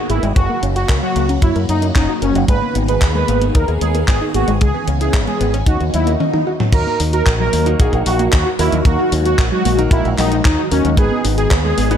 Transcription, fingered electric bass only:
0.10 0.20 G#1 medium
0.23 0.33 G#1 medium
0.36 0.47 F#1 medium
0.63 0.83 F#1 medium
0.89 1.00 C#2 medium
1.16 1.37 C#2 medium
1.42 1.53 F#2 medium
1.56 1.66 F#2 medium
1.69 1.90 F#2 medium
1.96 2.06 F#1 medium
2.22 2.32 F#1 medium
2.35 2.46 F#1 medium
2.48 2.59 G#1 loud
2.75 2.96 G#1 medium
3.02 3.22 D#2 medium
3.28 3.49 G#1 medium
3.55 3.65 D#2 medium
3.68 3.78 D#2 medium
3.81 4.02 D#2 medium
4.08 4.18 G#1 medium
4.34 4.45 G#1 medium
4.48 4.58 G#1 medium
4.61 4.72 C#2 medium
4.88 5.08 C#2 medium
5.14 5.24 G#1 medium
5.41 5.61 G#1 loud
5.66 5.77 D#2 medium
5.81 5.91 D#2 loud
5.94 6.14 D#2 medium
6.72 6.83 D#2 loud
7.00 7.21 D#2 medium
7.27 7.47 A#1 medium
7.53 7.74 D#2 medium
7.80 7.90 A#1 medium
7.93 8.03 A#1 medium
8.06 8.27 A#1 medium
8.33 8.43 D#2 medium
8.59 8.70 D#2 medium
8.72 8.83 D#2 loud
8.85 8.96 D#2 medium
9.12 9.33 D#2 medium
9.38 9.49 A#1 medium
9.65 9.86 A#1 medium
9.91 10.02 A#1 medium
10.05 10.16 A#1 loud
10.18 10.39 A#1 loud
10.45 10.55 D#2 medium
10.72 10.82 D#2 medium
10.85 10.95 D#2 loud
10.97 11.08 G#1 loud
11.25 11.45 G#1 medium
11.51 11.72 D#2 medium
11.78 11.97 G#1 medium

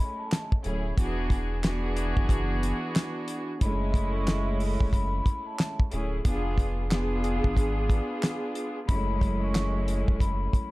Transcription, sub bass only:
0.65 0.93 D1 loud
0.98 2.13 E1 loud
2.17 2.73 F#1 medium
3.62 4.77 F#1 loud
4.81 4.91 E1 medium
4.93 5.21 F#1 loud
5.92 6.20 D1 loud
6.25 7.41 F1 loud
7.45 8.00 G#1 medium
8.89 10.04 F#1 loud
10.08 10.19 E1 medium
10.21 10.49 F#1 loud

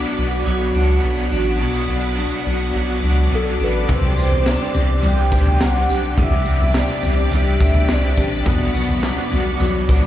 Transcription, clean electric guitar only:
0.00 1.59 B2 medium
0.00 0.17 B3 medium
0.00 0.74 D4 medium
0.18 1.02 B3 medium
0.46 2.74 F#3 medium
0.75 1.31 D4 medium
1.03 1.88 B3 medium
1.32 2.17 D4 medium
1.61 3.88 B2 medium
1.89 2.45 B3 medium
2.17 3.03 D4 medium
2.46 3.31 B3 medium
2.75 3.95 F#3 medium
3.04 3.60 D4 medium
3.32 3.95 B3 medium
3.60 4.20 D4 medium
3.88 6.16 C3 medium
4.17 4.73 C4 medium
4.46 5.31 D4 medium
4.74 5.59 C4 medium
5.03 7.30 G3 medium
5.32 5.88 D4 medium
5.60 6.45 C4 medium
5.89 6.74 D4 medium
6.18 8.46 C3 medium
6.46 7.02 C4 medium
6.75 7.60 D4 medium
7.03 7.87 C4 medium
7.32 8.52 G3 medium
7.60 8.17 D4 medium
7.88 8.52 C4 medium
8.17 9.03 D4 medium
8.46 10.06 B2 medium
8.75 9.30 B3 medium
9.03 9.87 D4 medium
9.32 10.06 B3 medium
9.60 10.06 F#3 medium
9.89 10.06 D4 medium

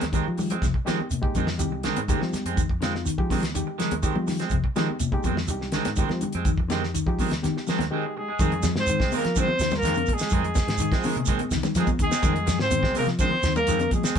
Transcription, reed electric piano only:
0.13 0.53 G#3 medium
0.13 0.54 D#4 medium
0.13 0.54 G4 medium
0.85 1.06 G#3 medium
0.85 1.06 D#4 medium
0.85 1.06 G4 medium
1.22 1.43 G#3 medium
1.22 1.43 D#4 medium
1.22 1.43 G4 loud
1.58 1.86 G#3 medium
1.58 1.86 D#4 medium
1.58 1.86 G4 medium
2.09 2.49 G#3 medium
2.09 2.49 D#4 medium
2.09 2.49 G4 medium
2.82 3.02 G#3 medium
2.82 3.02 D#4 medium
2.82 3.03 F4 medium
3.18 3.38 G#3 medium
3.18 3.38 D#4 medium
3.18 3.39 G4 loud
3.54 3.81 G#3 medium
3.54 3.82 D#4 medium
3.54 3.82 G4 medium
4.03 4.43 G#3 medium
4.03 4.44 D#4 medium
4.03 4.44 G4 medium
4.76 4.96 G#3 medium
4.76 4.96 D#4 medium
4.76 4.96 G4 medium
5.12 5.32 G#3 loud
5.12 5.33 D#4 medium
5.12 5.33 G4 loud
5.49 5.76 G#3 medium
5.49 5.76 D#4 medium
5.49 5.76 G4 medium
5.98 6.38 G#3 medium
5.98 6.38 D#4 medium
5.98 6.38 G4 medium
6.70 6.90 G#3 medium
6.70 6.90 D#4 medium
6.70 6.91 G4 medium
7.06 7.26 G#3 medium
7.06 7.27 D#4 medium
7.06 7.27 G4 medium
7.42 7.69 G#3 medium
7.42 7.69 D#4 medium
7.42 7.70 G4 medium
7.91 8.31 G#3 medium
7.91 8.31 D#4 medium
7.91 8.31 G4 medium

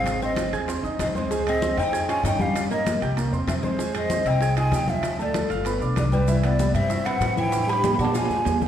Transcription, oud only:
0.00 0.20 C4 medium
0.22 0.51 C4 medium
1.03 1.08 C4 medium
1.18 1.45 G#3 medium
1.49 1.79 C4 medium
1.79 2.09 D#4 medium
2.09 2.23 F4 medium
2.25 2.38 D#4 medium
2.38 2.70 C#4 medium
2.71 3.00 A#3 medium
3.48 3.53 C4 medium
3.63 3.92 G#3 medium
3.95 4.26 C4 medium
4.26 4.57 D#4 medium
4.57 4.73 F4 medium
4.73 4.89 D#4 medium
4.89 5.20 C4 medium
5.22 5.49 A3 medium
5.97 6.02 B3 medium
6.13 6.42 G3 medium
6.44 6.72 B3 medium
6.76 7.04 C4 medium
7.06 7.37 C4 medium
7.38 7.69 E4 medium
7.69 7.98 G4 loud
7.99 8.13 F#4 medium
8.15 8.58 F4 medium

